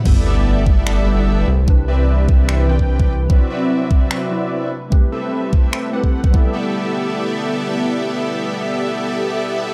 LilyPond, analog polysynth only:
\new Staff \with { instrumentName = "Analog polysynth" } { \time 4/4 \key g \major \tempo 4 = 148 <b g' a' d'' e''>8 <b g' a' d'' e''>4 <b g' a' d'' e''>8 <b g' a' d'' e''>4. r8 | r8 <c' g' b' d'' e''>4 <c' g' b' d'' e''>4 <c' g' b' d'' g''>16 <c' g' b' d'' g''>8 <c' g' b' d'' g''>16 r8 | <c' fis' b' d'' e''>8 <c' fis' b' d'' e''>4 <c' fis' b' d'' e''>8 <c' fis' b' d'' e''>4. r8 | r8 <c' g' a' b' e''>4 <c' g' a' b' e''>4 <c' g' a' b' fis''>16 <c' g' a' b' fis''>8 <c' g' a' b' fis''>16 <b g' a' d'' e''>8~ |
<b g' a' d'' e''>1~ | <b g' a' d'' e''>1 | }